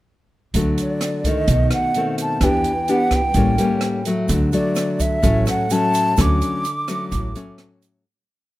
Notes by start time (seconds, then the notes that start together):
0.54 D2 D3 F#3 A3, kick, closed hi-hat
0.78 D5, closed hi-hat
1.01 cross-stick, closed hi-hat
1.24 D#3 A3 D#5, kick, closed hi-hat
1.48 B1 B2, kick, closed hi-hat
1.71 F#5, cross-stick, closed hi-hat
1.94 D#3 A3 C4, closed hi-hat
2.18 A5, closed hi-hat
2.41 E2 E3 B3 D4 G4 G5, kick, cross-stick, closed hi-hat
2.64 closed hi-hat
2.88 B3 D4 G4 F#5, closed hi-hat
3.11 kick, cross-stick, closed hi-hat
3.15 G5
3.34 A1 A2 G3 A#3 C#4, kick, closed hi-hat
3.58 G3 A#3 C#4, closed hi-hat
3.81 cross-stick, closed hi-hat
4.05 F#3 A3, closed hi-hat
4.29 D2 D3, kick, closed hi-hat, shaker
4.52 F#3 A3 D5, closed hi-hat, shaker
4.75 cross-stick, closed hi-hat, shaker
5.00 E5, kick, closed hi-hat, shaker
5.22 A1 A2 F#3 A3 C#4, kick, closed hi-hat, shaker
5.46 F#5, cross-stick, closed hi-hat, shaker
5.70 F#3 A3 C#4 A5, closed hi-hat, shaker
5.94 closed hi-hat, shaker
6.17 D2 D3 F#3 A3 C#4 D6, kick, cross-stick, closed hi-hat, shaker
6.41 closed hi-hat, shaker
6.65 closed hi-hat, shaker
6.88 F#3 A3 C#4, cross-stick, closed hi-hat, shaker
7.11 A1 A2, kick, closed hi-hat, shaker
7.35 F#3 A3 C#4, closed hi-hat, shaker
7.58 cross-stick, closed hi-hat
7.82 closed hi-hat, shaker